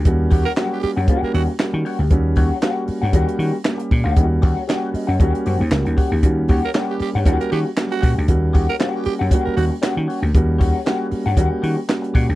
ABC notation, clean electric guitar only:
X:1
M:4/4
L:1/16
Q:"Swing 16ths" 1/4=117
K:Ebmix
V:1 name="Clean electric guitar"
z2 [Gd^f]2 [Gdf]2 z [Gdf] [Gdf]2 [Gdf] z3 [Gdf]2 | z2 [Gd^f]2 [Gdf]2 z [Gdf] [Gdf]2 [Gdf] z4 [Gdf]- | [Gd^f] z [Gdf]2 [Gdf]2 z [Gdf] [Gdf]2 [Gdf] z3 [Gdf]2 | z2 [Gd^f]2 [Gdf]2 z [Gdf] [Gdf]2 [Gdf] z3 [Gdf]2 |
z2 [Gd^f]2 [Gdf]2 z [Gdf] [Gdf]2 [Gdf] z [Gdf]2 [Gdf] z | z2 [Gd^f]2 [Gdf]2 z [Gdf] [Gdf]2 [Gdf] z3 [Gdf]2 |]